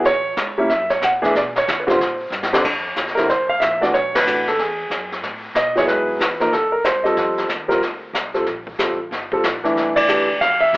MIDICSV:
0, 0, Header, 1, 4, 480
1, 0, Start_track
1, 0, Key_signature, -1, "major"
1, 0, Tempo, 323625
1, 76, Time_signature, 4, 2, 24, 8
1, 15976, End_track
2, 0, Start_track
2, 0, Title_t, "Grand piano"
2, 0, Program_c, 0, 0
2, 85, Note_on_c, 0, 73, 95
2, 856, Note_on_c, 0, 55, 76
2, 860, Note_on_c, 0, 58, 71
2, 865, Note_on_c, 0, 61, 71
2, 870, Note_on_c, 0, 64, 84
2, 979, Note_off_c, 0, 73, 0
2, 1016, Note_off_c, 0, 55, 0
2, 1017, Note_off_c, 0, 58, 0
2, 1020, Note_off_c, 0, 61, 0
2, 1023, Note_off_c, 0, 64, 0
2, 1035, Note_on_c, 0, 76, 93
2, 1316, Note_off_c, 0, 76, 0
2, 1339, Note_on_c, 0, 73, 76
2, 1502, Note_off_c, 0, 73, 0
2, 1549, Note_on_c, 0, 78, 92
2, 1624, Note_off_c, 0, 78, 0
2, 1810, Note_on_c, 0, 52, 78
2, 1810, Note_on_c, 0, 68, 90
2, 1812, Note_on_c, 0, 57, 69
2, 1816, Note_on_c, 0, 62, 71
2, 1852, Note_on_c, 0, 76, 79
2, 1971, Note_off_c, 0, 52, 0
2, 1971, Note_off_c, 0, 68, 0
2, 1973, Note_off_c, 0, 57, 0
2, 1975, Note_off_c, 0, 62, 0
2, 2015, Note_off_c, 0, 76, 0
2, 2028, Note_on_c, 0, 74, 89
2, 2102, Note_off_c, 0, 74, 0
2, 2342, Note_on_c, 0, 73, 90
2, 2645, Note_off_c, 0, 73, 0
2, 2666, Note_on_c, 0, 71, 54
2, 2771, Note_on_c, 0, 50, 78
2, 2782, Note_on_c, 0, 55, 69
2, 2785, Note_off_c, 0, 71, 0
2, 2785, Note_on_c, 0, 60, 68
2, 2792, Note_on_c, 0, 65, 83
2, 2833, Note_on_c, 0, 72, 73
2, 2932, Note_off_c, 0, 50, 0
2, 2937, Note_off_c, 0, 55, 0
2, 2939, Note_off_c, 0, 60, 0
2, 2942, Note_off_c, 0, 65, 0
2, 3416, Note_off_c, 0, 72, 0
2, 3749, Note_on_c, 0, 55, 69
2, 3750, Note_on_c, 0, 41, 74
2, 3754, Note_on_c, 0, 50, 70
2, 3754, Note_on_c, 0, 60, 69
2, 3754, Note_on_c, 0, 62, 87
2, 3901, Note_off_c, 0, 41, 0
2, 3901, Note_off_c, 0, 55, 0
2, 3903, Note_off_c, 0, 50, 0
2, 3903, Note_off_c, 0, 60, 0
2, 3903, Note_off_c, 0, 62, 0
2, 4673, Note_on_c, 0, 70, 80
2, 4700, Note_on_c, 0, 55, 57
2, 4707, Note_on_c, 0, 50, 64
2, 4714, Note_on_c, 0, 64, 72
2, 4720, Note_on_c, 0, 60, 59
2, 4847, Note_off_c, 0, 70, 0
2, 4856, Note_off_c, 0, 55, 0
2, 4860, Note_off_c, 0, 50, 0
2, 4863, Note_off_c, 0, 64, 0
2, 4866, Note_off_c, 0, 60, 0
2, 4889, Note_on_c, 0, 72, 88
2, 5182, Note_on_c, 0, 77, 90
2, 5193, Note_off_c, 0, 72, 0
2, 5340, Note_on_c, 0, 76, 98
2, 5361, Note_off_c, 0, 77, 0
2, 5628, Note_off_c, 0, 76, 0
2, 5651, Note_on_c, 0, 57, 59
2, 5654, Note_on_c, 0, 52, 66
2, 5656, Note_on_c, 0, 62, 60
2, 5656, Note_on_c, 0, 66, 74
2, 5667, Note_on_c, 0, 74, 87
2, 5741, Note_off_c, 0, 74, 0
2, 5812, Note_off_c, 0, 57, 0
2, 5814, Note_off_c, 0, 52, 0
2, 5815, Note_off_c, 0, 62, 0
2, 5815, Note_off_c, 0, 66, 0
2, 5844, Note_on_c, 0, 73, 92
2, 6151, Note_off_c, 0, 73, 0
2, 6160, Note_on_c, 0, 71, 92
2, 6311, Note_on_c, 0, 57, 51
2, 6316, Note_on_c, 0, 62, 53
2, 6318, Note_on_c, 0, 52, 52
2, 6319, Note_on_c, 0, 66, 59
2, 6585, Note_off_c, 0, 57, 0
2, 6588, Note_off_c, 0, 62, 0
2, 6589, Note_off_c, 0, 52, 0
2, 6589, Note_off_c, 0, 66, 0
2, 6596, Note_off_c, 0, 71, 0
2, 6646, Note_on_c, 0, 69, 77
2, 6813, Note_off_c, 0, 69, 0
2, 6815, Note_on_c, 0, 68, 73
2, 7535, Note_off_c, 0, 68, 0
2, 8248, Note_on_c, 0, 75, 101
2, 8524, Note_off_c, 0, 75, 0
2, 8534, Note_on_c, 0, 54, 66
2, 8539, Note_on_c, 0, 59, 59
2, 8551, Note_on_c, 0, 64, 61
2, 8556, Note_on_c, 0, 68, 76
2, 8570, Note_on_c, 0, 73, 88
2, 8643, Note_off_c, 0, 73, 0
2, 8717, Note_on_c, 0, 71, 92
2, 9159, Note_off_c, 0, 54, 0
2, 9161, Note_off_c, 0, 59, 0
2, 9167, Note_off_c, 0, 64, 0
2, 9169, Note_off_c, 0, 68, 0
2, 9446, Note_off_c, 0, 71, 0
2, 9496, Note_on_c, 0, 53, 69
2, 9507, Note_on_c, 0, 58, 64
2, 9509, Note_on_c, 0, 63, 62
2, 9511, Note_on_c, 0, 70, 78
2, 9657, Note_off_c, 0, 53, 0
2, 9662, Note_off_c, 0, 58, 0
2, 9663, Note_off_c, 0, 63, 0
2, 9665, Note_off_c, 0, 70, 0
2, 9680, Note_on_c, 0, 69, 86
2, 9961, Note_off_c, 0, 69, 0
2, 9968, Note_on_c, 0, 70, 75
2, 10138, Note_off_c, 0, 70, 0
2, 10154, Note_on_c, 0, 72, 87
2, 10437, Note_on_c, 0, 75, 79
2, 10454, Note_on_c, 0, 55, 70
2, 10458, Note_on_c, 0, 60, 63
2, 10462, Note_on_c, 0, 65, 64
2, 10463, Note_on_c, 0, 69, 75
2, 10468, Note_off_c, 0, 72, 0
2, 11078, Note_off_c, 0, 55, 0
2, 11081, Note_off_c, 0, 60, 0
2, 11083, Note_off_c, 0, 65, 0
2, 11083, Note_off_c, 0, 69, 0
2, 11349, Note_off_c, 0, 75, 0
2, 11392, Note_on_c, 0, 60, 63
2, 11398, Note_on_c, 0, 55, 71
2, 11400, Note_on_c, 0, 65, 68
2, 11408, Note_on_c, 0, 70, 80
2, 11565, Note_off_c, 0, 60, 0
2, 11569, Note_off_c, 0, 55, 0
2, 11569, Note_off_c, 0, 65, 0
2, 11573, Note_off_c, 0, 70, 0
2, 12373, Note_on_c, 0, 55, 62
2, 12373, Note_on_c, 0, 60, 57
2, 12379, Note_on_c, 0, 69, 67
2, 12386, Note_on_c, 0, 65, 54
2, 12536, Note_off_c, 0, 55, 0
2, 12536, Note_off_c, 0, 60, 0
2, 12539, Note_off_c, 0, 69, 0
2, 12543, Note_off_c, 0, 65, 0
2, 13036, Note_on_c, 0, 55, 56
2, 13037, Note_on_c, 0, 69, 59
2, 13041, Note_on_c, 0, 60, 53
2, 13044, Note_on_c, 0, 65, 52
2, 13310, Note_off_c, 0, 55, 0
2, 13310, Note_off_c, 0, 69, 0
2, 13312, Note_off_c, 0, 60, 0
2, 13314, Note_off_c, 0, 65, 0
2, 13833, Note_on_c, 0, 55, 69
2, 13834, Note_on_c, 0, 60, 65
2, 13843, Note_on_c, 0, 69, 79
2, 13844, Note_on_c, 0, 65, 66
2, 13986, Note_off_c, 0, 55, 0
2, 13987, Note_off_c, 0, 60, 0
2, 13991, Note_off_c, 0, 65, 0
2, 13991, Note_off_c, 0, 69, 0
2, 14293, Note_on_c, 0, 52, 74
2, 14305, Note_on_c, 0, 57, 66
2, 14306, Note_on_c, 0, 62, 69
2, 14312, Note_on_c, 0, 64, 78
2, 14773, Note_on_c, 0, 74, 106
2, 14919, Note_off_c, 0, 52, 0
2, 14925, Note_off_c, 0, 57, 0
2, 14925, Note_off_c, 0, 62, 0
2, 14928, Note_off_c, 0, 64, 0
2, 14956, Note_on_c, 0, 52, 69
2, 14958, Note_on_c, 0, 57, 61
2, 14966, Note_on_c, 0, 67, 76
2, 14968, Note_on_c, 0, 62, 60
2, 15230, Note_off_c, 0, 52, 0
2, 15231, Note_off_c, 0, 57, 0
2, 15235, Note_off_c, 0, 67, 0
2, 15236, Note_off_c, 0, 62, 0
2, 15388, Note_off_c, 0, 74, 0
2, 15442, Note_on_c, 0, 77, 102
2, 15729, Note_on_c, 0, 76, 112
2, 15753, Note_off_c, 0, 77, 0
2, 15976, Note_off_c, 0, 76, 0
2, 15976, End_track
3, 0, Start_track
3, 0, Title_t, "Upright bass"
3, 0, Program_c, 1, 32
3, 63, Note_on_c, 1, 33, 84
3, 534, Note_off_c, 1, 33, 0
3, 550, Note_on_c, 1, 37, 96
3, 1017, Note_off_c, 1, 37, 0
3, 1029, Note_on_c, 1, 42, 89
3, 1496, Note_off_c, 1, 42, 0
3, 1506, Note_on_c, 1, 46, 100
3, 1974, Note_off_c, 1, 46, 0
3, 2000, Note_on_c, 1, 47, 90
3, 2461, Note_off_c, 1, 47, 0
3, 2487, Note_on_c, 1, 50, 89
3, 2945, Note_off_c, 1, 50, 0
3, 2970, Note_on_c, 1, 46, 81
3, 3407, Note_off_c, 1, 46, 0
3, 3416, Note_on_c, 1, 43, 95
3, 3889, Note_off_c, 1, 43, 0
3, 3915, Note_on_c, 1, 41, 74
3, 4379, Note_off_c, 1, 41, 0
3, 4396, Note_on_c, 1, 38, 82
3, 4859, Note_off_c, 1, 38, 0
3, 4869, Note_on_c, 1, 36, 82
3, 5336, Note_off_c, 1, 36, 0
3, 5355, Note_on_c, 1, 34, 92
3, 5820, Note_off_c, 1, 34, 0
3, 5835, Note_on_c, 1, 35, 76
3, 6290, Note_off_c, 1, 35, 0
3, 6299, Note_on_c, 1, 33, 88
3, 6772, Note_off_c, 1, 33, 0
3, 6797, Note_on_c, 1, 40, 84
3, 7261, Note_off_c, 1, 40, 0
3, 7269, Note_on_c, 1, 42, 89
3, 7738, Note_off_c, 1, 42, 0
3, 7761, Note_on_c, 1, 45, 83
3, 8214, Note_off_c, 1, 45, 0
3, 8222, Note_on_c, 1, 47, 83
3, 8695, Note_off_c, 1, 47, 0
3, 8707, Note_on_c, 1, 44, 81
3, 9177, Note_off_c, 1, 44, 0
3, 9188, Note_on_c, 1, 40, 91
3, 9658, Note_off_c, 1, 40, 0
3, 9678, Note_on_c, 1, 36, 77
3, 10143, Note_off_c, 1, 36, 0
3, 10151, Note_on_c, 1, 43, 87
3, 10620, Note_off_c, 1, 43, 0
3, 10629, Note_on_c, 1, 41, 86
3, 11099, Note_off_c, 1, 41, 0
3, 11113, Note_on_c, 1, 39, 91
3, 11577, Note_off_c, 1, 39, 0
3, 11586, Note_on_c, 1, 38, 76
3, 12057, Note_off_c, 1, 38, 0
3, 12064, Note_on_c, 1, 36, 86
3, 12536, Note_off_c, 1, 36, 0
3, 12550, Note_on_c, 1, 34, 77
3, 13019, Note_off_c, 1, 34, 0
3, 13036, Note_on_c, 1, 33, 85
3, 13502, Note_off_c, 1, 33, 0
3, 13512, Note_on_c, 1, 31, 80
3, 13980, Note_off_c, 1, 31, 0
3, 13995, Note_on_c, 1, 34, 79
3, 14462, Note_off_c, 1, 34, 0
3, 14470, Note_on_c, 1, 36, 82
3, 14940, Note_off_c, 1, 36, 0
3, 14951, Note_on_c, 1, 38, 90
3, 15420, Note_off_c, 1, 38, 0
3, 15437, Note_on_c, 1, 41, 79
3, 15900, Note_off_c, 1, 41, 0
3, 15909, Note_on_c, 1, 43, 84
3, 15976, Note_off_c, 1, 43, 0
3, 15976, End_track
4, 0, Start_track
4, 0, Title_t, "Drums"
4, 71, Note_on_c, 9, 36, 22
4, 73, Note_on_c, 9, 25, 53
4, 73, Note_on_c, 9, 38, 46
4, 219, Note_off_c, 9, 36, 0
4, 221, Note_off_c, 9, 38, 0
4, 546, Note_on_c, 9, 38, 65
4, 548, Note_on_c, 9, 44, 58
4, 550, Note_on_c, 9, 36, 21
4, 695, Note_off_c, 9, 38, 0
4, 696, Note_off_c, 9, 44, 0
4, 698, Note_off_c, 9, 36, 0
4, 1031, Note_on_c, 9, 36, 21
4, 1035, Note_off_c, 9, 25, 0
4, 1035, Note_on_c, 9, 25, 45
4, 1035, Note_on_c, 9, 38, 46
4, 1179, Note_off_c, 9, 36, 0
4, 1184, Note_off_c, 9, 38, 0
4, 1332, Note_on_c, 9, 38, 44
4, 1481, Note_off_c, 9, 38, 0
4, 1514, Note_on_c, 9, 36, 23
4, 1514, Note_on_c, 9, 38, 61
4, 1516, Note_on_c, 9, 44, 62
4, 1662, Note_off_c, 9, 36, 0
4, 1663, Note_off_c, 9, 38, 0
4, 1664, Note_off_c, 9, 44, 0
4, 1834, Note_on_c, 9, 38, 42
4, 1982, Note_off_c, 9, 38, 0
4, 2001, Note_on_c, 9, 36, 21
4, 2005, Note_off_c, 9, 25, 0
4, 2005, Note_on_c, 9, 25, 57
4, 2005, Note_on_c, 9, 38, 50
4, 2150, Note_off_c, 9, 36, 0
4, 2153, Note_off_c, 9, 38, 0
4, 2312, Note_on_c, 9, 38, 65
4, 2460, Note_off_c, 9, 38, 0
4, 2485, Note_on_c, 9, 36, 26
4, 2492, Note_on_c, 9, 38, 67
4, 2494, Note_on_c, 9, 44, 53
4, 2633, Note_off_c, 9, 36, 0
4, 2641, Note_off_c, 9, 38, 0
4, 2642, Note_off_c, 9, 44, 0
4, 2789, Note_on_c, 9, 36, 60
4, 2804, Note_on_c, 9, 38, 42
4, 2938, Note_off_c, 9, 36, 0
4, 2952, Note_off_c, 9, 38, 0
4, 2967, Note_on_c, 9, 36, 22
4, 2978, Note_off_c, 9, 25, 0
4, 2978, Note_on_c, 9, 25, 56
4, 2978, Note_on_c, 9, 38, 49
4, 3115, Note_off_c, 9, 36, 0
4, 3126, Note_off_c, 9, 38, 0
4, 3439, Note_on_c, 9, 38, 50
4, 3440, Note_on_c, 9, 44, 55
4, 3587, Note_off_c, 9, 38, 0
4, 3589, Note_off_c, 9, 44, 0
4, 3601, Note_on_c, 9, 38, 62
4, 3749, Note_off_c, 9, 38, 0
4, 3763, Note_on_c, 9, 38, 82
4, 3912, Note_off_c, 9, 38, 0
4, 3921, Note_on_c, 9, 36, 64
4, 3924, Note_off_c, 9, 25, 0
4, 3924, Note_on_c, 9, 25, 49
4, 3924, Note_on_c, 9, 38, 43
4, 3924, Note_on_c, 9, 49, 70
4, 4069, Note_off_c, 9, 36, 0
4, 4072, Note_off_c, 9, 38, 0
4, 4072, Note_off_c, 9, 49, 0
4, 4392, Note_on_c, 9, 38, 57
4, 4393, Note_on_c, 9, 44, 51
4, 4398, Note_on_c, 9, 36, 24
4, 4540, Note_off_c, 9, 38, 0
4, 4541, Note_off_c, 9, 44, 0
4, 4546, Note_off_c, 9, 36, 0
4, 4556, Note_on_c, 9, 38, 27
4, 4696, Note_off_c, 9, 38, 0
4, 4696, Note_on_c, 9, 38, 33
4, 4717, Note_off_c, 9, 38, 0
4, 4717, Note_on_c, 9, 38, 35
4, 4865, Note_off_c, 9, 38, 0
4, 4878, Note_on_c, 9, 36, 22
4, 4883, Note_off_c, 9, 25, 0
4, 4883, Note_on_c, 9, 25, 45
4, 4883, Note_on_c, 9, 38, 42
4, 5026, Note_off_c, 9, 36, 0
4, 5031, Note_off_c, 9, 38, 0
4, 5356, Note_on_c, 9, 38, 55
4, 5357, Note_on_c, 9, 36, 19
4, 5357, Note_on_c, 9, 44, 56
4, 5504, Note_off_c, 9, 38, 0
4, 5505, Note_off_c, 9, 36, 0
4, 5506, Note_off_c, 9, 44, 0
4, 5674, Note_on_c, 9, 38, 37
4, 5822, Note_off_c, 9, 38, 0
4, 5839, Note_on_c, 9, 36, 25
4, 5844, Note_off_c, 9, 25, 0
4, 5844, Note_on_c, 9, 25, 52
4, 5844, Note_on_c, 9, 38, 43
4, 5988, Note_off_c, 9, 36, 0
4, 5993, Note_off_c, 9, 38, 0
4, 6156, Note_on_c, 9, 38, 79
4, 6157, Note_on_c, 9, 51, 66
4, 6304, Note_off_c, 9, 38, 0
4, 6305, Note_off_c, 9, 51, 0
4, 6326, Note_on_c, 9, 44, 51
4, 6475, Note_off_c, 9, 44, 0
4, 6633, Note_on_c, 9, 38, 33
4, 6782, Note_off_c, 9, 38, 0
4, 6801, Note_on_c, 9, 36, 19
4, 6806, Note_off_c, 9, 25, 0
4, 6806, Note_on_c, 9, 25, 42
4, 6806, Note_on_c, 9, 38, 41
4, 6950, Note_off_c, 9, 36, 0
4, 6954, Note_off_c, 9, 38, 0
4, 7278, Note_on_c, 9, 36, 23
4, 7281, Note_on_c, 9, 38, 56
4, 7283, Note_on_c, 9, 44, 53
4, 7426, Note_off_c, 9, 36, 0
4, 7429, Note_off_c, 9, 38, 0
4, 7431, Note_off_c, 9, 44, 0
4, 7591, Note_on_c, 9, 38, 38
4, 7740, Note_off_c, 9, 38, 0
4, 7755, Note_on_c, 9, 36, 22
4, 7761, Note_off_c, 9, 25, 0
4, 7761, Note_on_c, 9, 25, 53
4, 7761, Note_on_c, 9, 38, 44
4, 7904, Note_off_c, 9, 36, 0
4, 7909, Note_off_c, 9, 38, 0
4, 8232, Note_on_c, 9, 36, 18
4, 8233, Note_on_c, 9, 38, 59
4, 8234, Note_on_c, 9, 44, 55
4, 8381, Note_off_c, 9, 36, 0
4, 8381, Note_off_c, 9, 38, 0
4, 8382, Note_off_c, 9, 44, 0
4, 8551, Note_on_c, 9, 38, 35
4, 8700, Note_off_c, 9, 38, 0
4, 8714, Note_on_c, 9, 36, 23
4, 8718, Note_off_c, 9, 25, 0
4, 8718, Note_on_c, 9, 25, 53
4, 8718, Note_on_c, 9, 38, 42
4, 8862, Note_off_c, 9, 36, 0
4, 8867, Note_off_c, 9, 38, 0
4, 9194, Note_on_c, 9, 36, 17
4, 9200, Note_on_c, 9, 38, 58
4, 9202, Note_on_c, 9, 44, 52
4, 9342, Note_off_c, 9, 36, 0
4, 9349, Note_off_c, 9, 38, 0
4, 9350, Note_off_c, 9, 44, 0
4, 9495, Note_on_c, 9, 38, 39
4, 9643, Note_off_c, 9, 38, 0
4, 9675, Note_on_c, 9, 36, 24
4, 9681, Note_off_c, 9, 25, 0
4, 9681, Note_on_c, 9, 25, 48
4, 9681, Note_on_c, 9, 38, 44
4, 9823, Note_off_c, 9, 36, 0
4, 9829, Note_off_c, 9, 38, 0
4, 10152, Note_on_c, 9, 38, 58
4, 10154, Note_on_c, 9, 36, 16
4, 10154, Note_on_c, 9, 44, 61
4, 10300, Note_off_c, 9, 38, 0
4, 10302, Note_off_c, 9, 36, 0
4, 10302, Note_off_c, 9, 44, 0
4, 10461, Note_on_c, 9, 38, 36
4, 10609, Note_off_c, 9, 38, 0
4, 10629, Note_off_c, 9, 25, 0
4, 10629, Note_on_c, 9, 25, 42
4, 10629, Note_on_c, 9, 38, 44
4, 10631, Note_on_c, 9, 36, 21
4, 10777, Note_off_c, 9, 38, 0
4, 10780, Note_off_c, 9, 36, 0
4, 10942, Note_on_c, 9, 38, 42
4, 11091, Note_off_c, 9, 38, 0
4, 11111, Note_on_c, 9, 38, 55
4, 11113, Note_on_c, 9, 36, 19
4, 11113, Note_on_c, 9, 44, 55
4, 11260, Note_off_c, 9, 38, 0
4, 11261, Note_off_c, 9, 36, 0
4, 11261, Note_off_c, 9, 44, 0
4, 11425, Note_on_c, 9, 38, 37
4, 11573, Note_off_c, 9, 38, 0
4, 11593, Note_on_c, 9, 36, 21
4, 11604, Note_off_c, 9, 25, 0
4, 11604, Note_on_c, 9, 25, 46
4, 11604, Note_on_c, 9, 38, 43
4, 11741, Note_off_c, 9, 36, 0
4, 11752, Note_off_c, 9, 38, 0
4, 12073, Note_on_c, 9, 36, 20
4, 12082, Note_on_c, 9, 38, 58
4, 12083, Note_on_c, 9, 44, 58
4, 12221, Note_off_c, 9, 36, 0
4, 12230, Note_off_c, 9, 38, 0
4, 12231, Note_off_c, 9, 44, 0
4, 12370, Note_on_c, 9, 38, 33
4, 12519, Note_off_c, 9, 38, 0
4, 12551, Note_off_c, 9, 25, 0
4, 12551, Note_on_c, 9, 25, 51
4, 12551, Note_on_c, 9, 36, 18
4, 12551, Note_on_c, 9, 38, 41
4, 12699, Note_off_c, 9, 36, 0
4, 12700, Note_off_c, 9, 38, 0
4, 12857, Note_on_c, 9, 36, 58
4, 13005, Note_off_c, 9, 36, 0
4, 13032, Note_on_c, 9, 38, 57
4, 13034, Note_on_c, 9, 36, 19
4, 13034, Note_on_c, 9, 44, 58
4, 13180, Note_off_c, 9, 38, 0
4, 13182, Note_off_c, 9, 36, 0
4, 13182, Note_off_c, 9, 44, 0
4, 13515, Note_on_c, 9, 36, 26
4, 13526, Note_off_c, 9, 25, 0
4, 13526, Note_on_c, 9, 25, 51
4, 13526, Note_on_c, 9, 38, 42
4, 13664, Note_off_c, 9, 36, 0
4, 13674, Note_off_c, 9, 38, 0
4, 13820, Note_on_c, 9, 36, 55
4, 13968, Note_off_c, 9, 36, 0
4, 13994, Note_on_c, 9, 38, 60
4, 13996, Note_on_c, 9, 44, 53
4, 13997, Note_on_c, 9, 36, 18
4, 14143, Note_off_c, 9, 38, 0
4, 14144, Note_off_c, 9, 44, 0
4, 14146, Note_off_c, 9, 36, 0
4, 14306, Note_on_c, 9, 38, 35
4, 14455, Note_off_c, 9, 38, 0
4, 14477, Note_on_c, 9, 36, 19
4, 14486, Note_off_c, 9, 25, 0
4, 14486, Note_on_c, 9, 25, 50
4, 14486, Note_on_c, 9, 38, 43
4, 14626, Note_off_c, 9, 36, 0
4, 14634, Note_off_c, 9, 38, 0
4, 14780, Note_on_c, 9, 36, 79
4, 14780, Note_on_c, 9, 51, 72
4, 14928, Note_off_c, 9, 36, 0
4, 14928, Note_off_c, 9, 51, 0
4, 14953, Note_on_c, 9, 44, 62
4, 15101, Note_off_c, 9, 44, 0
4, 15437, Note_on_c, 9, 36, 18
4, 15444, Note_off_c, 9, 25, 0
4, 15444, Note_on_c, 9, 25, 50
4, 15444, Note_on_c, 9, 38, 42
4, 15585, Note_off_c, 9, 36, 0
4, 15592, Note_off_c, 9, 38, 0
4, 15916, Note_on_c, 9, 36, 27
4, 15924, Note_on_c, 9, 38, 61
4, 15926, Note_on_c, 9, 44, 53
4, 15976, Note_off_c, 9, 25, 0
4, 15976, Note_off_c, 9, 36, 0
4, 15976, Note_off_c, 9, 38, 0
4, 15976, Note_off_c, 9, 44, 0
4, 15976, End_track
0, 0, End_of_file